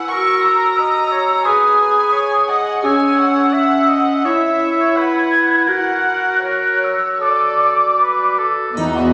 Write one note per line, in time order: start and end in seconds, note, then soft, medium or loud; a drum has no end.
0.00 1.42 E6 soft
0.09 1.42 F#4 soft
0.09 0.81 A#4 soft
0.09 0.43 C#6 medium
0.42 1.45 A#5 medium
0.79 1.13 D#5 soft
1.11 1.47 C#5 soft
1.45 2.86 G#4 soft
1.45 1.80 B4 soft
1.45 2.50 G#5 medium
1.45 2.61 D#6 soft
1.80 2.14 B4 soft
2.13 2.51 C#5 soft
2.48 2.87 D#5 soft
2.48 2.84 F#5 medium
2.84 4.27 C#4 soft
2.84 3.55 C#5 soft
2.84 3.19 G#5 medium
2.84 3.51 E6 soft
3.19 4.25 F#5 medium
3.53 3.90 E5 soft
3.89 4.27 D#5 soft
4.25 5.68 E4 soft
4.25 4.99 C#5 soft
4.25 4.97 E5 medium
4.25 4.96 E6 soft
4.95 5.69 B4 soft
4.95 5.66 F#5 soft
4.95 5.68 G#6 soft
5.67 8.41 F#4 soft
5.67 6.41 A#4 soft
5.67 6.42 F#5 medium
5.67 6.43 F#6 soft
6.42 6.93 A#4 soft
6.42 7.22 C#5 soft
6.42 6.82 F#6 soft
6.83 7.23 E6 soft
7.21 7.89 A4 soft
7.21 8.41 D5 soft
7.21 8.44 D6 soft
8.00 8.40 B4 soft
8.39 8.77 A4 soft
8.76 9.13 E2 soft
8.76 9.13 E3 soft
8.76 9.13 B3 soft
8.76 8.95 D#4 soft
8.76 9.13 F#4 soft
8.76 9.13 D#5 soft
8.76 triangle soft
8.97 9.13 F#4 soft
9.01 9.13 F#4 soft